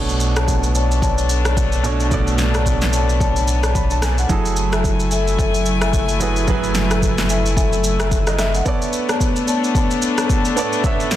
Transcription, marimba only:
0.36 0.72 C#5 medium
0.36 0.72 D5 medium
0.36 0.72 A5 medium
0.75 1.00 C#5 medium
0.75 1.00 D5 medium
0.75 1.01 A5 medium
1.02 1.18 C#5 loud
1.02 1.18 D5 medium
1.02 1.19 A5 loud
1.45 1.57 C#5 medium
1.45 1.57 D5 medium
1.45 1.57 A5 medium
2.54 2.90 C#5 medium
2.54 2.90 D5 medium
2.54 2.91 A5 medium
2.93 3.19 C#5 medium
2.93 3.19 D5 medium
2.93 3.19 A5 medium
3.20 3.36 C#5 loud
3.20 3.37 D5 medium
3.20 3.37 A5 loud
3.63 3.75 C#5 medium
3.63 3.75 D5 medium
3.63 3.76 A5 medium
4.72 5.09 A4 medium
4.72 5.09 E5 medium
4.72 5.09 G#5 medium
5.11 5.37 A4 medium
5.11 5.37 E5 medium
5.11 5.37 G#5 medium
5.38 5.55 A4 loud
5.38 5.55 E5 medium
5.38 5.55 G#5 loud
5.82 5.93 A4 medium
5.82 5.94 E5 medium
5.82 5.94 G#5 medium
6.91 7.27 A4 medium
6.91 7.27 E5 medium
6.91 7.27 G#5 medium
7.29 7.55 A4 medium
7.29 7.55 E5 medium
7.29 7.55 G#5 medium
7.57 7.73 A4 medium
7.57 7.73 E5 medium
7.57 7.73 G#5 loud
8.00 8.36 A4 medium
8.00 8.36 E5 medium
8.00 8.36 G#5 medium
8.38 8.64 A4 medium
8.38 8.64 E5 medium
8.38 8.64 G#5 medium
9.09 9.45 B3 medium
9.09 9.45 C#5 medium
9.09 9.45 D5 medium
9.09 9.45 A5 medium
9.47 9.73 B3 medium
9.47 9.73 C#5 medium
9.47 9.73 D5 medium
9.47 9.73 A5 medium
9.75 9.91 B3 loud
9.75 9.91 C#5 medium
9.75 9.91 D5 medium
9.75 9.91 A5 loud
10.18 10.30 B3 medium
10.18 10.30 C#5 medium
10.18 10.30 D5 medium
10.18 10.30 A5 medium

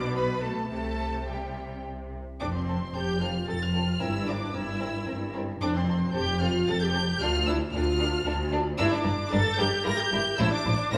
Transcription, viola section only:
0.00 0.15 D4 medium
0.15 0.23 B3 medium
0.43 0.70 A3 medium
0.71 1.27 A3 medium
1.28 1.85 G3 medium
2.41 2.47 D4 medium
2.55 2.95 C4 medium
2.97 3.23 G4 medium
3.22 3.49 F4 medium
3.49 3.62 A4 medium
3.63 4.02 F4 medium
4.02 4.29 E4 medium
4.28 4.55 D4 medium
4.54 5.33 E4 medium
5.61 5.74 D4 loud
5.75 6.15 C4 medium
6.15 6.41 G4 loud
6.41 6.67 F4 medium
6.68 6.81 A4 loud
6.83 7.22 G4 medium
7.22 7.48 F4 loud
7.48 7.56 E4 loud
7.74 8.52 F4 loud
8.80 8.92 E4 loud
8.93 9.32 D4 loud
9.32 9.59 A4 loud
9.59 9.86 G4 loud
9.86 9.99 A#4 loud
9.99 10.39 G4 loud
10.39 10.52 E4 loud
10.53 10.93 D4 loud
10.93 10.98 A#4 loud

